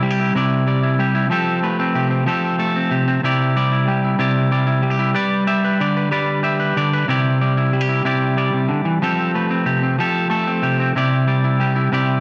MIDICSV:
0, 0, Header, 1, 3, 480
1, 0, Start_track
1, 0, Key_signature, 0, "major"
1, 0, Tempo, 321543
1, 1939, Time_signature, 12, 3, 24, 8
1, 18214, End_track
2, 0, Start_track
2, 0, Title_t, "Clean electric guitar"
2, 0, Program_c, 0, 27
2, 0, Note_on_c, 0, 48, 83
2, 0, Note_on_c, 0, 55, 63
2, 0, Note_on_c, 0, 74, 64
2, 40, Note_off_c, 0, 55, 0
2, 40, Note_on_c, 0, 55, 77
2, 40, Note_on_c, 0, 64, 68
2, 157, Note_off_c, 0, 64, 0
2, 157, Note_on_c, 0, 67, 57
2, 294, Note_on_c, 0, 64, 60
2, 501, Note_off_c, 0, 48, 0
2, 509, Note_off_c, 0, 67, 0
2, 510, Note_off_c, 0, 74, 0
2, 518, Note_off_c, 0, 64, 0
2, 523, Note_on_c, 0, 48, 91
2, 539, Note_on_c, 0, 64, 75
2, 554, Note_on_c, 0, 74, 77
2, 992, Note_off_c, 0, 74, 0
2, 997, Note_off_c, 0, 55, 0
2, 997, Note_on_c, 0, 55, 65
2, 1010, Note_on_c, 0, 74, 62
2, 1224, Note_off_c, 0, 64, 0
2, 1242, Note_on_c, 0, 64, 60
2, 1478, Note_off_c, 0, 55, 0
2, 1478, Note_on_c, 0, 55, 70
2, 1489, Note_on_c, 0, 67, 74
2, 1696, Note_off_c, 0, 64, 0
2, 1714, Note_on_c, 0, 64, 77
2, 1918, Note_off_c, 0, 64, 0
2, 1921, Note_off_c, 0, 48, 0
2, 1925, Note_off_c, 0, 74, 0
2, 1932, Note_off_c, 0, 55, 0
2, 1938, Note_on_c, 0, 53, 88
2, 1956, Note_on_c, 0, 60, 74
2, 1960, Note_off_c, 0, 67, 0
2, 1966, Note_on_c, 0, 67, 66
2, 1972, Note_on_c, 0, 69, 79
2, 2433, Note_on_c, 0, 57, 69
2, 2435, Note_off_c, 0, 69, 0
2, 2442, Note_on_c, 0, 71, 68
2, 2674, Note_off_c, 0, 60, 0
2, 2680, Note_on_c, 0, 60, 66
2, 2905, Note_on_c, 0, 48, 66
2, 2910, Note_off_c, 0, 67, 0
2, 2916, Note_on_c, 0, 67, 65
2, 3138, Note_off_c, 0, 60, 0
2, 3144, Note_on_c, 0, 60, 55
2, 3358, Note_off_c, 0, 53, 0
2, 3376, Note_on_c, 0, 53, 85
2, 3381, Note_off_c, 0, 48, 0
2, 3381, Note_off_c, 0, 60, 0
2, 3387, Note_on_c, 0, 60, 67
2, 3388, Note_off_c, 0, 67, 0
2, 3389, Note_off_c, 0, 71, 0
2, 3394, Note_on_c, 0, 67, 65
2, 3406, Note_on_c, 0, 69, 76
2, 3843, Note_off_c, 0, 57, 0
2, 3855, Note_off_c, 0, 69, 0
2, 3861, Note_on_c, 0, 57, 63
2, 3873, Note_on_c, 0, 69, 65
2, 4101, Note_off_c, 0, 60, 0
2, 4121, Note_on_c, 0, 60, 59
2, 4335, Note_on_c, 0, 48, 79
2, 4341, Note_off_c, 0, 67, 0
2, 4347, Note_on_c, 0, 67, 68
2, 4575, Note_off_c, 0, 60, 0
2, 4593, Note_on_c, 0, 60, 69
2, 4786, Note_off_c, 0, 48, 0
2, 4786, Note_off_c, 0, 53, 0
2, 4788, Note_off_c, 0, 57, 0
2, 4823, Note_off_c, 0, 69, 0
2, 4824, Note_off_c, 0, 60, 0
2, 4826, Note_on_c, 0, 48, 89
2, 4841, Note_on_c, 0, 64, 77
2, 4842, Note_off_c, 0, 67, 0
2, 4848, Note_on_c, 0, 67, 74
2, 4857, Note_on_c, 0, 74, 81
2, 5315, Note_on_c, 0, 55, 71
2, 5318, Note_off_c, 0, 74, 0
2, 5324, Note_on_c, 0, 74, 69
2, 5531, Note_off_c, 0, 64, 0
2, 5549, Note_on_c, 0, 64, 64
2, 5785, Note_off_c, 0, 67, 0
2, 5787, Note_off_c, 0, 55, 0
2, 5787, Note_on_c, 0, 55, 75
2, 5791, Note_on_c, 0, 67, 66
2, 6017, Note_off_c, 0, 64, 0
2, 6035, Note_on_c, 0, 64, 58
2, 6231, Note_off_c, 0, 48, 0
2, 6237, Note_off_c, 0, 64, 0
2, 6249, Note_on_c, 0, 48, 91
2, 6255, Note_on_c, 0, 64, 75
2, 6260, Note_off_c, 0, 67, 0
2, 6266, Note_on_c, 0, 67, 64
2, 6270, Note_off_c, 0, 74, 0
2, 6276, Note_on_c, 0, 74, 77
2, 6738, Note_off_c, 0, 55, 0
2, 6738, Note_on_c, 0, 55, 73
2, 6740, Note_off_c, 0, 74, 0
2, 6746, Note_on_c, 0, 74, 64
2, 6949, Note_off_c, 0, 64, 0
2, 6966, Note_on_c, 0, 64, 62
2, 7200, Note_off_c, 0, 55, 0
2, 7200, Note_on_c, 0, 55, 71
2, 7311, Note_off_c, 0, 67, 0
2, 7317, Note_on_c, 0, 67, 60
2, 7431, Note_off_c, 0, 64, 0
2, 7449, Note_on_c, 0, 64, 67
2, 7662, Note_off_c, 0, 48, 0
2, 7663, Note_off_c, 0, 64, 0
2, 7677, Note_off_c, 0, 55, 0
2, 7677, Note_off_c, 0, 67, 0
2, 7677, Note_on_c, 0, 55, 89
2, 7683, Note_on_c, 0, 71, 65
2, 7691, Note_off_c, 0, 74, 0
2, 7697, Note_on_c, 0, 74, 83
2, 8167, Note_off_c, 0, 74, 0
2, 8167, Note_on_c, 0, 67, 70
2, 8173, Note_on_c, 0, 76, 68
2, 8408, Note_off_c, 0, 71, 0
2, 8427, Note_on_c, 0, 71, 62
2, 8652, Note_off_c, 0, 76, 0
2, 8665, Note_on_c, 0, 50, 70
2, 8677, Note_on_c, 0, 74, 77
2, 8894, Note_off_c, 0, 71, 0
2, 8912, Note_on_c, 0, 71, 62
2, 9118, Note_off_c, 0, 55, 0
2, 9118, Note_off_c, 0, 71, 0
2, 9124, Note_on_c, 0, 55, 85
2, 9136, Note_on_c, 0, 71, 75
2, 9138, Note_off_c, 0, 74, 0
2, 9144, Note_on_c, 0, 74, 76
2, 9593, Note_off_c, 0, 67, 0
2, 9599, Note_on_c, 0, 67, 61
2, 9605, Note_off_c, 0, 74, 0
2, 9611, Note_on_c, 0, 76, 63
2, 9831, Note_off_c, 0, 71, 0
2, 9849, Note_on_c, 0, 71, 62
2, 10084, Note_off_c, 0, 50, 0
2, 10093, Note_off_c, 0, 76, 0
2, 10101, Note_on_c, 0, 50, 72
2, 10110, Note_on_c, 0, 74, 74
2, 10332, Note_off_c, 0, 71, 0
2, 10352, Note_on_c, 0, 71, 67
2, 10550, Note_off_c, 0, 50, 0
2, 10552, Note_off_c, 0, 74, 0
2, 10555, Note_off_c, 0, 71, 0
2, 10571, Note_on_c, 0, 48, 93
2, 10577, Note_off_c, 0, 67, 0
2, 10583, Note_on_c, 0, 64, 71
2, 10596, Note_on_c, 0, 67, 72
2, 10604, Note_on_c, 0, 74, 86
2, 11047, Note_off_c, 0, 74, 0
2, 11058, Note_off_c, 0, 55, 0
2, 11064, Note_on_c, 0, 55, 65
2, 11067, Note_on_c, 0, 74, 61
2, 11287, Note_off_c, 0, 64, 0
2, 11305, Note_on_c, 0, 64, 62
2, 11523, Note_off_c, 0, 64, 0
2, 11537, Note_off_c, 0, 67, 0
2, 11541, Note_off_c, 0, 55, 0
2, 11541, Note_on_c, 0, 55, 70
2, 11543, Note_on_c, 0, 64, 63
2, 11656, Note_off_c, 0, 64, 0
2, 11656, Note_on_c, 0, 67, 54
2, 11775, Note_on_c, 0, 64, 58
2, 11993, Note_off_c, 0, 48, 0
2, 12001, Note_off_c, 0, 64, 0
2, 12011, Note_on_c, 0, 48, 81
2, 12017, Note_off_c, 0, 67, 0
2, 12017, Note_off_c, 0, 74, 0
2, 12019, Note_on_c, 0, 64, 64
2, 12031, Note_on_c, 0, 67, 75
2, 12037, Note_on_c, 0, 74, 80
2, 12486, Note_off_c, 0, 74, 0
2, 12499, Note_off_c, 0, 55, 0
2, 12499, Note_on_c, 0, 55, 71
2, 12507, Note_on_c, 0, 74, 63
2, 12724, Note_off_c, 0, 48, 0
2, 12742, Note_on_c, 0, 48, 65
2, 12967, Note_on_c, 0, 50, 75
2, 12981, Note_off_c, 0, 48, 0
2, 13208, Note_off_c, 0, 50, 0
2, 13214, Note_on_c, 0, 52, 80
2, 13432, Note_off_c, 0, 64, 0
2, 13434, Note_off_c, 0, 74, 0
2, 13457, Note_off_c, 0, 52, 0
2, 13466, Note_on_c, 0, 53, 90
2, 13478, Note_on_c, 0, 60, 72
2, 13481, Note_off_c, 0, 67, 0
2, 13487, Note_on_c, 0, 67, 71
2, 13491, Note_on_c, 0, 69, 79
2, 13947, Note_off_c, 0, 55, 0
2, 13952, Note_on_c, 0, 57, 72
2, 13957, Note_off_c, 0, 69, 0
2, 13963, Note_on_c, 0, 71, 58
2, 14184, Note_off_c, 0, 60, 0
2, 14190, Note_on_c, 0, 60, 60
2, 14410, Note_on_c, 0, 48, 68
2, 14417, Note_off_c, 0, 67, 0
2, 14423, Note_on_c, 0, 67, 66
2, 14661, Note_off_c, 0, 60, 0
2, 14667, Note_on_c, 0, 60, 59
2, 14887, Note_off_c, 0, 53, 0
2, 14897, Note_off_c, 0, 48, 0
2, 14905, Note_off_c, 0, 60, 0
2, 14905, Note_on_c, 0, 53, 85
2, 14914, Note_off_c, 0, 71, 0
2, 14921, Note_off_c, 0, 67, 0
2, 14927, Note_on_c, 0, 67, 71
2, 14931, Note_on_c, 0, 69, 81
2, 15354, Note_off_c, 0, 57, 0
2, 15370, Note_off_c, 0, 69, 0
2, 15372, Note_on_c, 0, 57, 72
2, 15388, Note_on_c, 0, 69, 63
2, 15633, Note_on_c, 0, 60, 55
2, 15858, Note_on_c, 0, 48, 74
2, 15863, Note_off_c, 0, 67, 0
2, 15869, Note_on_c, 0, 67, 73
2, 16102, Note_off_c, 0, 60, 0
2, 16119, Note_on_c, 0, 60, 69
2, 16311, Note_off_c, 0, 57, 0
2, 16313, Note_off_c, 0, 48, 0
2, 16318, Note_off_c, 0, 53, 0
2, 16348, Note_off_c, 0, 69, 0
2, 16353, Note_off_c, 0, 60, 0
2, 16354, Note_on_c, 0, 48, 92
2, 16363, Note_on_c, 0, 64, 70
2, 16368, Note_off_c, 0, 67, 0
2, 16374, Note_on_c, 0, 67, 66
2, 16385, Note_on_c, 0, 74, 86
2, 16825, Note_on_c, 0, 55, 69
2, 16830, Note_off_c, 0, 74, 0
2, 16836, Note_on_c, 0, 74, 68
2, 17059, Note_off_c, 0, 64, 0
2, 17076, Note_on_c, 0, 64, 63
2, 17311, Note_off_c, 0, 55, 0
2, 17311, Note_on_c, 0, 55, 64
2, 17318, Note_off_c, 0, 67, 0
2, 17324, Note_on_c, 0, 67, 73
2, 17534, Note_off_c, 0, 64, 0
2, 17551, Note_on_c, 0, 64, 61
2, 17776, Note_off_c, 0, 48, 0
2, 17785, Note_off_c, 0, 64, 0
2, 17794, Note_on_c, 0, 48, 85
2, 17803, Note_on_c, 0, 64, 70
2, 17806, Note_off_c, 0, 67, 0
2, 17812, Note_on_c, 0, 67, 70
2, 17816, Note_off_c, 0, 74, 0
2, 17822, Note_on_c, 0, 74, 74
2, 18214, Note_off_c, 0, 48, 0
2, 18214, Note_off_c, 0, 55, 0
2, 18214, Note_off_c, 0, 64, 0
2, 18214, Note_off_c, 0, 67, 0
2, 18214, Note_off_c, 0, 74, 0
2, 18214, End_track
3, 0, Start_track
3, 0, Title_t, "Muted clean electric guitar strokes"
3, 546, Note_on_c, 9, 29, 72
3, 695, Note_off_c, 9, 29, 0
3, 14911, Note_on_c, 9, 29, 73
3, 15060, Note_off_c, 9, 29, 0
3, 18214, End_track
0, 0, End_of_file